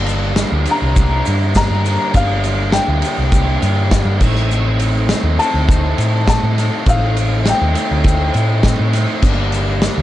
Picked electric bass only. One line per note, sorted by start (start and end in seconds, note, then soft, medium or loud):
0.00 0.43 G1 loud
0.52 0.65 D2 loud
0.82 1.21 C2 medium
1.28 1.66 G2 medium
1.70 1.96 G2 medium
2.14 2.79 G1 medium
2.88 3.01 D2 loud
3.18 3.57 C2 medium
3.63 4.01 G2 medium
4.05 4.19 G2 medium
4.21 5.11 A1 medium
5.24 5.37 D#2 medium
5.54 5.93 D2 medium
5.98 6.37 A2 medium
6.43 6.69 A2 medium
6.86 7.51 A1 loud
7.62 7.74 D#2 loud
7.91 8.30 D2 medium
8.35 8.74 A2 medium
8.80 9.05 A2 medium
9.23 9.88 G1 loud
9.98 10.02 D2 loud